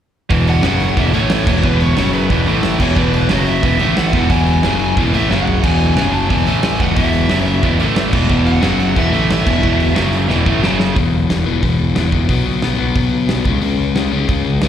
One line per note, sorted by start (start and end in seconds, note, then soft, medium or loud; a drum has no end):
0.30 0.61 E1 loud
0.30 0.62 E2 medium
0.30 0.63 B2 loud
0.30 0.63 E3 loud
0.30 kick loud
0.30 open hi-hat medium
0.47 1.00 F#5 loud
0.47 open hi-hat medium
0.62 0.94 F#1 medium
0.62 0.96 F#2 medium
0.62 0.96 C#3 medium
0.62 0.96 F#3 loud
0.62 snare loud
0.62 open hi-hat medium
0.80 open hi-hat medium
0.97 1.12 E1 medium
0.97 1.13 E2 medium
0.97 1.13 B2 medium
0.97 1.12 E3 loud
0.97 1.03 E5 medium
0.97 kick loud
0.97 open hi-hat medium
1.12 1.44 A1 medium
1.12 1.46 A2 medium
1.12 1.46 E3 medium
1.12 1.47 A3 loud
1.12 1.65 C#5 medium
1.12 open hi-hat medium
1.30 snare loud
1.30 open hi-hat medium
1.47 1.62 E1 loud
1.47 1.61 E2 loud
1.47 1.61 B2 loud
1.47 1.62 E3 medium
1.47 kick loud
1.47 crash loud
1.62 1.94 E1 loud
1.62 1.96 E2 medium
1.62 1.96 B2 medium
1.62 1.96 E3 loud
1.62 1.81 B4 loud
1.62 kick loud
1.80 2.13 C#5 medium
1.80 open hi-hat medium
1.96 2.28 F#1 loud
1.96 2.29 F#2 loud
1.96 2.30 C#3 loud
1.96 2.30 F#3 loud
1.96 snare loud
1.96 open hi-hat medium
2.13 2.44 B4 medium
2.13 open hi-hat medium
2.30 2.46 E1 medium
2.30 2.46 E2 medium
2.30 2.46 B2 loud
2.30 2.46 E3 loud
2.30 kick loud
2.30 open hi-hat medium
2.46 2.77 A1 medium
2.46 2.79 A2 medium
2.46 2.80 E3 medium
2.46 2.80 A3 medium
2.46 open hi-hat medium
2.63 snare loud
2.63 open hi-hat medium
2.79 2.95 E1 medium
2.79 2.94 E2 medium
2.79 2.95 B2 medium
2.79 2.95 E3 loud
2.79 2.98 C#5 medium
2.79 kick loud
2.79 crash loud
2.96 3.27 E1 loud
2.96 3.28 E2 medium
2.96 3.29 B2 loud
2.96 3.29 E3 loud
2.96 3.32 B4 loud
2.96 kick loud
3.13 open hi-hat medium
3.29 3.60 F#1 loud
3.29 3.62 F#2 loud
3.29 3.62 C#3 loud
3.29 3.63 F#3 loud
3.29 3.48 D#5 medium
3.29 snare loud
3.29 open hi-hat medium
3.47 3.97 E5 medium
3.47 open hi-hat medium
3.63 3.78 E1 medium
3.63 3.79 E2 medium
3.63 3.79 B2 medium
3.63 3.79 E3 loud
3.63 kick loud
3.63 open hi-hat medium
3.78 4.10 A1 medium
3.78 4.12 A2 medium
3.78 4.13 E3 medium
3.78 4.13 A3 medium
3.78 open hi-hat medium
3.97 4.31 F#5 loud
3.97 snare loud
3.97 open hi-hat medium
4.13 4.28 E1 medium
4.13 4.29 E2 medium
4.13 4.29 B2 medium
4.13 4.30 E3 loud
4.13 kick loud
4.13 open hi-hat medium
4.30 4.61 E1 medium
4.30 4.63 E2 loud
4.30 4.63 B2 loud
4.30 4.63 E3 loud
4.30 4.93 G#5 loud
4.30 kick loud
4.30 open hi-hat medium
4.47 open hi-hat medium
4.63 4.94 F#1 medium
4.63 4.96 F#2 loud
4.63 4.96 C#3 loud
4.63 4.97 F#3 medium
4.63 snare loud
4.63 open hi-hat medium
4.79 open hi-hat medium
4.96 5.12 E1 medium
4.96 5.13 E2 loud
4.96 5.13 B2 loud
4.96 5.13 E3 loud
4.96 kick loud
4.96 open hi-hat medium
5.14 5.29 A1 medium
5.14 5.29 A2 loud
5.14 5.30 E3 medium
5.14 5.30 A3 medium
5.14 5.30 E5 medium
5.14 open hi-hat medium
5.30 5.61 F#1 medium
5.30 5.63 F#2 loud
5.30 5.63 C#3 medium
5.30 5.64 F#3 loud
5.30 5.64 F#5 loud
5.30 snare medium
5.47 floor tom medium
5.64 5.94 E1 loud
5.64 5.96 E2 loud
5.64 5.97 B2 loud
5.64 5.97 E3 loud
5.64 6.13 G#5 loud
5.64 kick loud
5.64 crash loud
5.64 splash medium
5.81 open hi-hat medium
5.97 6.28 F#1 medium
5.97 6.30 F#2 loud
5.97 6.30 C#3 loud
5.97 6.31 F#3 loud
5.97 snare loud
5.97 open hi-hat medium
6.13 6.29 A5 loud
6.13 open hi-hat medium
6.30 6.45 E1 medium
6.30 6.46 E2 medium
6.30 6.46 B2 loud
6.30 6.46 E3 loud
6.30 6.81 G#5 loud
6.30 kick loud
6.30 open hi-hat medium
6.47 6.77 A1 medium
6.47 6.79 A2 medium
6.47 6.80 E3 medium
6.47 6.80 A3 loud
6.47 open hi-hat medium
6.63 snare loud
6.63 open hi-hat medium
6.80 6.95 E1 medium
6.80 6.95 E2 medium
6.80 6.96 B2 loud
6.80 6.97 E3 medium
6.80 6.95 F#5 medium
6.80 kick loud
6.80 open hi-hat medium
6.96 7.27 E1 loud
6.96 7.29 E2 medium
6.96 7.30 B2 medium
6.96 7.30 E3 loud
6.96 8.09 E5 loud
6.96 kick loud
6.96 open hi-hat medium
7.13 open hi-hat medium
7.29 7.61 F#1 medium
7.29 7.62 F#2 loud
7.29 7.63 C#3 medium
7.29 7.63 F#3 loud
7.29 snare loud
7.29 open hi-hat medium
7.46 open hi-hat medium
7.63 7.78 E1 medium
7.63 7.79 E2 medium
7.63 7.79 B2 medium
7.63 7.78 E3 loud
7.63 kick loud
7.63 open hi-hat medium
7.79 8.10 A1 medium
7.79 8.12 A2 medium
7.79 8.12 E3 loud
7.79 8.13 A3 medium
7.79 open hi-hat medium
7.96 snare loud
7.96 open hi-hat medium
8.12 8.28 E1 loud
8.12 8.28 E2 medium
8.12 8.28 B2 medium
8.12 8.29 E3 loud
8.12 kick loud
8.12 crash loud
8.29 8.60 E1 loud
8.29 8.61 E2 medium
8.29 8.62 B2 medium
8.29 8.63 E3 loud
8.29 kick loud
8.46 8.98 F#5 loud
8.46 open hi-hat medium
8.61 8.93 F#1 loud
8.61 8.94 F#2 loud
8.61 8.95 C#3 medium
8.61 8.96 F#3 loud
8.61 snare loud
8.61 open hi-hat medium
8.80 open hi-hat medium
8.95 9.12 E1 medium
8.95 9.12 E2 loud
8.95 9.10 B2 loud
8.95 9.10 E3 loud
8.95 9.28 E5 medium
8.95 kick loud
8.95 open hi-hat medium
9.11 9.43 A1 loud
9.11 9.45 A2 medium
9.11 9.45 E3 loud
9.11 9.45 A3 loud
9.11 open hi-hat medium
9.30 10.60 E5 medium
9.30 snare loud
9.30 open hi-hat medium
9.45 9.62 E1 medium
9.45 9.60 E2 medium
9.45 9.61 B2 medium
9.45 9.62 E3 loud
9.45 kick loud
9.45 crash medium
9.61 9.94 E1 loud
9.61 9.95 E2 medium
9.61 9.96 B2 loud
9.61 9.97 E3 loud
9.61 kick loud
9.80 open hi-hat medium
9.95 10.27 F#1 medium
9.95 10.28 F#2 loud
9.95 10.29 C#3 medium
9.95 10.29 F#3 loud
9.95 snare loud
9.95 open hi-hat medium
10.13 open hi-hat medium
10.29 10.45 E1 medium
10.29 10.45 E2 loud
10.29 10.45 B2 loud
10.29 10.45 E3 loud
10.29 snare medium
10.46 10.61 A1 medium
10.46 10.64 A2 loud
10.46 10.64 E3 medium
10.46 10.62 A3 loud
10.46 kick loud
10.61 10.93 F#1 medium
10.61 10.94 F#2 loud
10.61 10.95 C#3 loud
10.61 10.95 F#3 loud
10.61 snare loud
10.80 snare medium
10.95 11.09 E1 medium
10.95 11.28 E2 medium
10.95 11.29 B2 loud
10.95 11.29 E3 medium
10.95 kick loud
10.95 open hi-hat medium
11.12 11.25 E1 medium
11.29 11.42 E1 medium
11.29 11.46 E2 medium
11.29 11.45 B2 medium
11.29 11.45 E3 medium
11.29 snare loud
11.29 open hi-hat soft
11.46 11.59 E1 medium
11.46 11.61 E2 medium
11.46 11.62 B2 medium
11.46 11.62 E3 loud
11.62 11.75 E1 medium
11.62 11.94 E2 loud
11.62 11.94 B2 medium
11.62 11.95 E3 medium
11.62 kick medium
11.62 open hi-hat medium
11.79 11.92 E1 medium
11.95 12.09 E1 medium
11.95 12.12 E2 medium
11.95 12.11 B2 medium
11.95 12.10 E3 medium
11.95 snare loud
11.95 open hi-hat medium
12.11 12.25 E1 medium
12.11 12.28 E2 medium
12.11 12.28 B2 medium
12.11 12.27 E3 medium
12.11 kick medium
12.29 12.42 B1 loud
12.29 12.62 B2 loud
12.29 12.62 F#3 loud
12.29 12.62 B3 loud
12.29 kick loud
12.29 open hi-hat medium
12.45 12.58 B1 medium
12.62 12.75 B1 medium
12.62 12.78 B2 medium
12.62 12.78 F#3 medium
12.62 12.77 B3 medium
12.62 snare loud
12.62 open hi-hat medium
12.78 12.91 B1 medium
12.78 12.94 B2 medium
12.78 12.95 F#3 loud
12.78 12.96 B3 loud
12.95 13.08 B1 medium
12.95 13.28 B2 medium
12.95 13.28 F#3 medium
12.95 13.29 B3 loud
12.95 kick loud
12.95 open hi-hat medium
13.11 13.24 B1 medium
13.27 13.40 B1 medium
13.27 13.45 B2 medium
13.27 13.45 F#3 medium
13.27 13.45 B3 medium
13.27 snare loud
13.27 open hi-hat medium
13.45 13.58 C#2 medium
13.45 13.62 C#3 medium
13.45 13.61 G#3 loud
13.45 13.60 C#4 loud
13.45 kick loud
13.61 13.74 C#2 loud
13.61 13.96 C#3 medium
13.61 13.95 G#3 medium
13.61 13.94 C#4 loud
13.61 open hi-hat medium
13.78 13.91 C#2 medium
13.94 14.07 C#2 medium
13.94 14.11 C#3 medium
13.94 14.12 G#3 medium
13.94 14.12 C#4 medium
13.94 snare medium
13.94 open hi-hat soft
14.12 14.25 C#2 medium
14.12 14.29 C#3 medium
14.12 14.28 G#3 medium
14.12 14.27 C#4 loud
14.28 14.41 C#2 medium
14.28 14.62 C#3 medium
14.28 14.62 G#3 medium
14.28 14.62 C#4 medium
14.28 kick loud
14.28 open hi-hat soft
14.45 14.58 C#2 medium
14.60 14.68 C#2 medium
14.60 14.68 C#3 medium
14.60 14.68 G#3 medium
14.60 14.68 C#4 medium
14.60 snare loud
14.60 open hi-hat medium